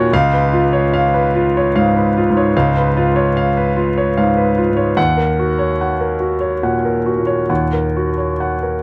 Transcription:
Already playing: A#2 F#4 A#4 C#5 F#5
0.13 C#2 F5
0.33 B4
0.53 F4
0.73 C#5
0.94 F5
1.14 B4
1.35 F4
1.57 C#5
1.76 G#2 F5
1.96 B4
2.17 F4
2.30 G#2
2.37 C#5
2.56 C#2 F5
2.77 B4
2.97 F4
3.16 C#5
3.37 F5
3.57 B4
3.77 F4
3.98 C#5
4.17 G#2 F5
4.37 B4
4.58 F4
4.70 G#2
4.77 C#5
4.97 D#2 F#5
5.17 A#4
5.39 F#4
5.59 C#5
5.81 F#5
6.00 A#4
6.20 F#4
6.41 C#5
6.63 A#2 F#5
6.85 A#4
7.06 F#4
7.19 A#2
7.27 C#5
7.49 D#2 F#5
7.73 A#4
7.97 F#4
8.18 C#5
8.40 F#5
8.63 A#4

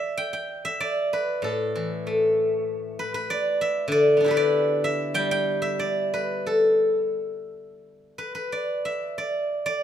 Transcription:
Already playing: B4 D5 E5
0.17 G5
0.33 G5
0.65 E5
0.80 D5
1.13 B4
1.42 A2 A4
1.76 E3
2.07 A3
2.99 B4
3.14 B4
3.30 D5
3.61 E5
3.88 D3 D5
4.17 B3 D4
4.24 E4 G4 A4
4.31 B4
4.37 D5
4.84 E5
5.14 G3 G5
5.31 G5
5.62 E5
5.79 D5
6.14 B4
6.46 A4
8.18 B4
8.35 B4
8.52 D5
8.85 E5
9.18 D5
9.66 D5

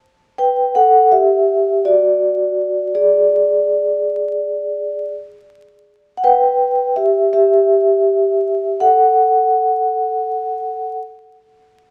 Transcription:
0.38 B4 G5
0.75 A4 F#5
1.12 G4 E5
1.85 F#4 D5
2.95 G#4 D5
6.17 F#5
6.24 B4 G5
6.96 G4 E5
7.33 G4 E5
8.80 A4 F#5

